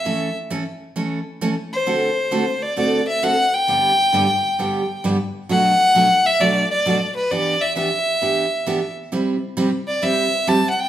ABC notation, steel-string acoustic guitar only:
X:1
M:4/4
L:1/8
Q:"Swing" 1/4=132
K:Bphr
V:1 name="Steel-string acoustic guitar"
[E,A,^CEA] z [E,A,CEA] z [E,A,CEA] z [E,A,CEA] z | [D,A,CFA] z [D,A,CFA] z [D,A,CFA] z [D,A,CFA] z | [G,,D,G,B,DG] z [G,,D,G,B,DG] z [G,,D,G,B,DG] z [G,,D,G,B,DG] z | [B,,F,A,DF] z [B,,F,A,DF] z [B,,F,A,DF] z [B,,F,A,DF] z |
[E,B,DG] z [E,B,DG] z [E,B,DG] z [E,B,DG] z | [C,G,CEG] z [C,G,CEG] z [C,G,CEG] z [C,G,CEG] z |]